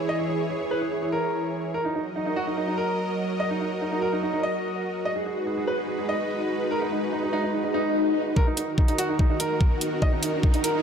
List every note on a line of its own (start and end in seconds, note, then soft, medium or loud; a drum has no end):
0.00 1.71 E3 medium
0.00 1.71 E4 medium
0.00 1.71 G#4 medium
0.00 1.71 C#5 medium
0.09 0.16 D#5 medium
0.19 0.27 G#4 medium
0.30 0.37 G#4 medium
0.50 0.58 G#4 medium
0.61 0.68 G#4 medium
0.71 0.78 B4 medium
0.81 0.89 G#4 medium
0.92 0.99 G#4 medium
1.02 1.09 G#4 medium
1.12 1.66 A#4 medium
1.74 5.02 F#3 medium
1.74 8.32 F#4 medium
1.74 1.82 A#4 medium
1.74 5.02 A#4 medium
1.74 5.02 D#5 medium
1.85 1.92 D#4 medium
1.95 2.03 D#4 medium
2.16 2.23 D#4 medium
2.26 2.34 D#4 medium
2.36 2.44 F#4 medium
2.47 2.54 D#4 medium
2.57 2.65 D#4 medium
2.67 2.75 D#4 medium
2.78 3.32 A#4 medium
3.40 3.47 D#5 medium
3.50 3.58 D#4 medium
3.61 3.68 D#4 medium
3.81 3.89 D#4 medium
3.92 3.99 D#4 medium
4.02 4.09 A#4 medium
4.12 4.20 D#4 medium
4.23 4.30 D#4 medium
4.33 4.41 D#4 medium
4.43 4.97 D#5 medium
5.05 8.33 G#3 medium
5.05 8.33 D#4 medium
5.05 8.33 B4 medium
5.05 5.13 D#5 medium
5.16 5.23 G#4 medium
5.26 5.34 G#4 medium
5.47 5.54 G#4 medium
5.57 5.65 G#4 medium
5.67 5.75 B4 medium
5.78 5.85 G#4 medium
5.88 5.96 G#4 medium
5.99 6.06 G#4 medium
6.09 6.63 D#5 medium
6.71 6.78 A#4 medium
6.81 6.89 D#4 medium
6.92 6.99 D#4 medium
7.12 7.20 D#4 medium
7.23 7.30 D#4 medium
7.33 7.40 D#4 medium
7.43 7.51 D#4 medium
7.53 7.61 D#4 medium
7.53 swell medium
7.64 7.71 D#4 medium
7.74 8.28 D#4 medium
8.36 10.82 D#3 medium
8.36 10.82 D#4 medium
8.36 10.82 F#4 medium
8.36 8.44 A#4 medium
8.36 10.82 A#4 medium
8.36 kick medium
8.36 riser medium
8.47 8.54 D#4 medium
8.57 8.65 D#4 medium
8.57 closed hi-hat medium
8.78 8.85 D#4 medium
8.78 kick medium
8.88 8.96 D#4 medium
8.88 closed hi-hat soft
8.98 9.06 F#4 medium
8.98 closed hi-hat medium
9.09 9.16 D#4 medium
9.19 9.27 D#4 medium
9.19 kick medium
9.30 9.37 D#4 medium
9.40 9.94 A#4 medium
9.40 closed hi-hat medium
9.61 kick medium
9.81 closed hi-hat medium
10.02 10.10 D#5 medium
10.02 kick medium
10.13 10.20 D#4 medium
10.23 10.30 D#4 medium
10.23 closed hi-hat medium
10.43 10.51 D#4 medium
10.43 kick medium
10.54 10.61 D#4 medium
10.54 closed hi-hat soft
10.64 10.72 A#4 medium
10.64 closed hi-hat medium
10.75 10.82 D#4 medium